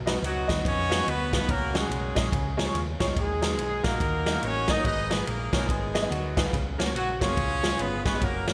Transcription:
Already playing: fingered electric bass B1, grand piano B2
0.06 grand piano B3 D#4 F#4 B4 D#5, snare, ride
0.22 fingered electric bass C#2, horn section F#3 B3 D#4 F#4, ride
0.48 fingered electric bass D#2, grand piano B3 D#4 F#4 B4 D#5, kick, snare, ride
0.65 fingered electric bass F2, horn section C#4 F#4 C#5, kick, ride
0.89 grand piano B3 D#4 F#4 B4 F5, snare, ride
0.98 grand piano B3 D#4 F#4 B4 D#5
1.07 fingered electric bass D2, horn section B3 B4, ride
1.31 grand piano B3 D#4 F#4 B4 F5, horn section B3 B4, kick, snare, ride
1.40 grand piano B3 D#4 F#4 B4 F#5
1.48 fingered electric bass C#2, grand piano C#3, horn section A#3 C#4 F#4 A#4, kick, ride
1.73 grand piano G#3 C#4 F#4 G#4 C#5, horn section G#3 C#4 G#4, snare, ride
1.90 fingered electric bass B1, ride
2.15 fingered electric bass A#1, grand piano G#3 C#4 F#4 G#4 D#5, kick, snare, ride
2.32 fingered electric bass C#2, grand piano C#3, kick, ride
2.57 grand piano G#3 C#4 F4 G#4 C#5, snare, ride
2.65 grand piano G#3 C#4 F4 G#4 C#5
2.74 fingered electric bass D#2, ride
2.99 fingered electric bass C#2, grand piano G#3 C#4 F4 G#4 C#5, kick, snare, ride
3.07 grand piano G#3 C#4 F4 G#4 C#5
3.15 fingered electric bass D#2, grand piano D#3, horn section D#4, kick, ride
3.19 horn section G#3 G#4
3.41 grand piano A#3 D#4 F#4 A#4 D#5, snare, ride
3.58 fingered electric bass B1, ride
3.83 fingered electric bass A#1, grand piano A#3 D#4 F#4 A#4 F5, horn section A#3 D#4 F#4 A#4, kick, snare, ride
4.00 fingered electric bass D#2, kick, ride
4.26 grand piano A#3 D#4 F#4 A#4 D#5, snare, ride
4.35 grand piano A#3 D#4 F#4 A#4 F5
4.43 fingered electric bass A1, horn section C#4 C#5, ride
4.68 grand piano A#3 D#4 F#4 A#4 D#5, horn section D#4 D#5, kick, snare, ride
4.77 grand piano A#3 D#4 F#4 A#4 C#5
4.84 fingered electric bass G#1, grand piano G#2, horn section D#4 G#4 B4 D#5, kick, ride
5.10 grand piano B3 D#4 G#4 B4 D#5, horn section B3 B4, snare, ride
5.27 fingered electric bass A#1, horn section A#3 A#4, ride
5.53 fingered electric bass B1, horn section A#3 A#4, grand piano B3 D#4 G#4 B4 C#5, kick, snare, ride
5.68 fingered electric bass G#1, horn section G#3 B3 D#4 G#4, kick, ride
5.94 grand piano B3 D#4 G#4 B4 D#5, snare, ride
6.02 grand piano B3 D#4 G#4 B4 D#5
6.10 fingered electric bass D2, horn section F#3 B3 D#4 F#4, ride
6.36 grand piano B3 D#4 G#4 B4 D#5, kick, snare, ride
6.45 grand piano B3 D#4 G#4 B4 F5
6.52 fingered electric bass C#2, grand piano C#3, kick, ride
6.78 grand piano A#3 C#4 F#4 A#4 C#5, snare, ride
6.95 fingered electric bass A#1, horn section F#3 F#4, ride
7.20 fingered electric bass F#1, grand piano A#3 C#4 F#4 A#4 C#5, horn section C#4 F4 G#4 C#5, kick, snare, ride
7.37 fingered electric bass C#2, grand piano C#3, kick, ride
7.63 grand piano G#3 C#4 F4 G#4 C#5, snare, ride
7.71 grand piano G#3 C#4 F4 G#4 C#5
7.79 fingered electric bass G1, horn section B3 B4, ride
8.05 grand piano G#3 C#4 F4 G#4 C#5, horn section B3 B4, kick, snare, ride
8.14 grand piano G#3 C#4 F4 G#4 C#5
8.21 fingered electric bass F#1, horn section A#3 C#4 F#4 A#4, kick, ride
8.47 grand piano A#3 C#4 F#4 A#4 C#5, horn section A#3 C#4 F#4 A#4, snare, ride

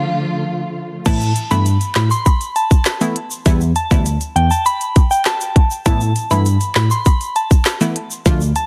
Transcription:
Already playing: string section D3 F3 A3 F4
1.06 tine electric piano A2, synth stab E3 A3 B3 E4, synth bell A5, kick, closed hi-hat, crash, shaker
1.21 shaker
1.36 closed hi-hat, shaker
1.51 tine electric piano G2, synth stab E3 A3 B3 E4, synth bell B5, shaker
1.66 closed hi-hat, shaker
1.81 closed hi-hat, shaker
1.95 tine electric piano A2, synth bell B5, snare, clap, closed hi-hat
2.11 synth bell C6, shaker
2.26 synth bell B5, kick, closed hi-hat, shaker
2.41 closed hi-hat, shaker
2.56 synth bell A5, closed hi-hat, shaker
2.71 kick, shaker
2.85 snare, clap, closed hi-hat, shaker
3.01 synth stab E3 A3 B3 E4, closed hi-hat, shaker
3.16 closed hi-hat
3.31 shaker
3.46 tine electric piano E2, synth stab E3 G3 B3 E4, kick, closed hi-hat, shaker
3.61 shaker
3.76 synth bell A5, closed hi-hat, shaker
3.91 tine electric piano D2, synth stab E3 G3 B3 E4, kick, shaker
4.06 closed hi-hat, shaker
4.21 closed hi-hat, shaker
4.36 tine electric piano E2, synth bell G5, closed hi-hat
4.51 synth bell A5, shaker
4.66 synth bell B5, closed hi-hat, shaker
4.81 closed hi-hat, shaker
4.96 kick, closed hi-hat, shaker
5.11 synth bell G5, shaker
5.25 synth bell A5, snare, clap, closed hi-hat, shaker
5.41 closed hi-hat, shaker
5.56 kick, closed hi-hat
5.71 shaker
5.86 tine electric piano A2, synth stab E3 A3 B3 E4, synth bell A5, kick, closed hi-hat, shaker
6.01 shaker
6.16 closed hi-hat, shaker
6.31 tine electric piano G2, synth stab E3 A3 B3 E4, synth bell B5, shaker
6.46 closed hi-hat, shaker
6.61 closed hi-hat, shaker
6.75 tine electric piano A2, synth bell B5, snare, clap, closed hi-hat
6.91 synth bell C6, shaker
7.06 synth bell B5, kick, closed hi-hat, shaker
7.21 closed hi-hat, shaker
7.36 synth bell A5, closed hi-hat, shaker
7.51 kick, shaker
7.65 snare, clap, closed hi-hat, shaker
7.81 synth stab E3 A3 B3 E4, closed hi-hat, shaker
7.96 closed hi-hat
8.11 shaker
8.26 tine electric piano D2, synth stab F3 A3 D4 F4, kick, closed hi-hat, shaker
8.41 shaker
8.56 synth bell A5, closed hi-hat, shaker

